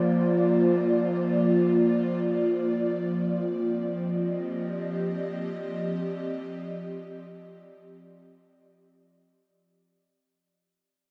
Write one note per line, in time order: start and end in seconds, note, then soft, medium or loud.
0.00 3.03 F3 medium
0.00 10.41 F3 medium
0.00 5.85 A#3 medium
0.00 4.26 F4 medium
0.00 10.42 F4 medium
0.00 4.99 C5 medium
0.00 10.30 D5 medium
3.04 10.31 F3 medium
3.15 10.30 C4 medium
3.93 10.30 D#5 medium
4.25 10.29 G4 medium